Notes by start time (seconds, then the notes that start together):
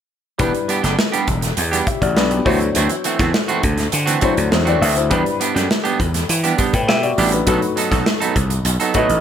0.38 E1 G3 B3 D4 E4 G4 B4, kick, closed hi-hat
0.53 muted clean electric guitar stroke, closed hi-hat
0.68 G3 B3 D4 G4, closed hi-hat
0.83 F#1 G3 B3 D4 G4, snare, closed hi-hat
0.98 muted clean electric guitar stroke, snare
1.12 G3 B3 D4 G4, closed hi-hat
1.27 E1, muted clean electric guitar stroke, kick, closed hi-hat
1.42 muted clean electric guitar stroke, snare, closed hi-hat
1.57 E2, muted clean electric guitar stroke, closed hi-hat
1.72 G3 B3 D4 G4, closed hi-hat
1.87 G4 E5, muted clean electric guitar stroke, kick, closed hi-hat
2.01 A1 F#4 D5, muted clean electric guitar stroke, kick, closed hi-hat
2.16 B1 D4 B4, muted clean electric guitar stroke, snare
2.31 B3 G4, muted clean electric guitar stroke, closed hi-hat
2.45 D2 E3 F#3 A3 C4 D4 E4 F#4 C5, kick, open hi-hat
2.60 muted clean electric guitar stroke, closed hi-hat
2.75 D2 E3 A3 C4 F#4, closed hi-hat
2.89 muted clean electric guitar stroke, closed hi-hat
3.04 E3 A3 C4 F#4, closed hi-hat
3.19 E2 E3 A3 C4 F#4, kick, snare, closed hi-hat
3.33 muted clean electric guitar stroke, snare
3.48 E3 A3 C4 F#4, closed hi-hat
3.62 D2, muted clean electric guitar stroke, kick, closed hi-hat
3.77 muted clean electric guitar stroke, snare, closed hi-hat
3.92 D3, muted clean electric guitar stroke, closed hi-hat
4.06 E3 A3 C4 F#4, closed hi-hat
4.21 E3 F#3 A3 C4 D4 E4 F#4 C5, kick, closed hi-hat
4.36 D2, muted clean electric guitar stroke, closed hi-hat
4.50 E2 E4 C5, muted clean electric guitar stroke, snare
4.65 E3 A3 C4 F#4 D5, closed hi-hat
4.80 D2 E3 A3 C4 F#4 E5, open hi-hat
4.96 E4 C5, muted clean electric guitar stroke, closed hi-hat
5.10 E2 G3 B3 D4 E4 G4 B4, kick, closed hi-hat
5.25 muted clean electric guitar stroke, closed hi-hat
5.40 G3 B3 D4 G4, closed hi-hat
5.55 F#2 G3 B3 D4 G4, snare, closed hi-hat
5.69 muted clean electric guitar stroke, snare
5.84 G3 B3 D4 G4, closed hi-hat
6.00 E2, muted clean electric guitar stroke, kick, closed hi-hat
6.14 muted clean electric guitar stroke, snare, closed hi-hat
6.29 E3, muted clean electric guitar stroke, closed hi-hat
6.44 G3 B3 D4 G4, closed hi-hat
6.58 G3 B3 D4 G4, kick, closed hi-hat
6.73 A2 B4 G5, muted clean electric guitar stroke, kick, closed hi-hat
6.87 B2 G4 E5, muted clean electric guitar stroke, snare
7.03 F#4 D5, muted clean electric guitar stroke, closed hi-hat
7.18 A1 G3 B3 D4 G4, open hi-hat
7.32 D4 B4, muted clean electric guitar stroke, closed hi-hat
7.46 B1 F#3 A3 B3 D#4 F#4 A4 B4, kick, closed hi-hat
7.61 muted clean electric guitar stroke, closed hi-hat
7.76 F#3 B3 D#4 A4, closed hi-hat
7.91 B1 F#3 B3 D#4 A4, kick, snare, closed hi-hat
8.06 muted clean electric guitar stroke, snare
8.20 F#3 B3 D#4 A4, closed hi-hat
8.35 C2, muted clean electric guitar stroke, kick, closed hi-hat
8.50 muted clean electric guitar stroke, closed hi-hat
8.65 B1, muted clean electric guitar stroke, closed hi-hat
8.80 F#3 B3 D#4 A4, closed hi-hat
8.93 A2 F#3 A3 B3 D#4 F#4 A4 B4 D#5, kick, closed hi-hat
9.09 A1, muted clean electric guitar stroke, closed hi-hat